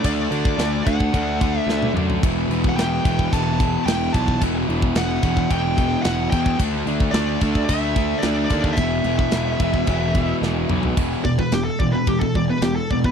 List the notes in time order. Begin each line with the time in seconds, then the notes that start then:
0.03 D2 D3 A3 D4 D5, kick, crash
0.31 D2 D3 A3 D4, crash
0.45 kick
0.58 D2 D3 A3 D4, snare, crash
0.85 D2 D3 A3 D4 F#5, kick, crash
1.00 kick
1.13 D2 D3 A3 D4, kick, crash
1.41 D3 A3 D4, kick, crash
1.59 E5
1.67 D2 D3 A3 D4, snare
1.82 high tom
1.94 F#2 D3 A3 D4, mid tom
2.10 floor tom
2.23 E1 E2 B2 E3, kick, crash
2.48 E1 E2 B2 E3, crash
2.64 kick
2.69 F#5
2.76 E1 E2 B2 E3 G5, snare, crash
3.05 E1 E2 B2 E3, kick, crash
3.19 kick
3.32 E1 E2 B2 E3 A5, kick, crash
3.59 E2 B2 E3, kick, crash
3.86 E1 E2 B2 E3 G5, snare, crash
4.13 B1 E2 B2 E3 A5, kick, crash
4.28 kick
4.42 E1 E2 B2 E3, kick, crash
4.68 E1 E2 B2 E3, crash
4.82 kick
4.95 E1 E2 B2 E3 F#5, snare, crash
5.22 E1 E2 B2 E3, kick, crash
5.37 kick
5.50 E1 E2 B2 E3 G5, kick, crash
5.77 E2 B2 E3, kick, crash
6.02 E1 E2 B2 E3 F#5, snare, crash
6.31 E2 B2 E3 G5, kick, crash
6.46 kick
6.59 D2 D3 A3 D4, kick, crash
6.86 D2 D3 A3 D4, crash
7.00 kick
7.11 D2 D3 A3 D4 D5, snare, crash
7.41 D2 D3 A3 D4, kick, crash
7.55 kick
7.65 E5
7.69 D2 D3 A3 D4, kick, crash
7.96 D3 A3 D4, kick, crash
8.19 D5, crash
8.23 D2 D3 A3 D4, snare
8.45 D5
8.50 D#2 D3 A3 D4, kick, crash
8.64 kick
8.73 E5, crash
8.77 E1 E2 B2 E3, kick
9.04 E1 E2 B2 E3, crash
9.19 kick
9.31 E1 E2 B2 E3, snare, crash
9.60 E1 E2 B2 E3, kick, crash
9.74 kick
9.87 E1 E2 B2 E3, kick, crash
10.15 E2 B2 E3, kick, crash
10.42 E1 E2 B2 E3, snare
10.69 B1 E2 B2 E3, mid tom
10.83 floor tom
10.97 E1 E2 B2 E3, kick, crash
11.25 E1 E2 B2 D5, kick
11.38 E2 B2 B4, kick
11.52 E1 E2 B2 G4, snare, ride bell
11.65 A4
11.79 E1 E2 B2 D5, kick
11.93 E2 B2 B4
12.07 E1 E2 B2 G4, kick, ride bell
12.19 E2 B2 A4, kick
12.35 E1 E2 B2 D5, kick
12.49 E2 B2 B4
12.62 E1 E2 B2 G4, snare, ride bell
12.76 A4
12.90 E1 E2 B2 D5, kick
13.04 E2 B2 B4, kick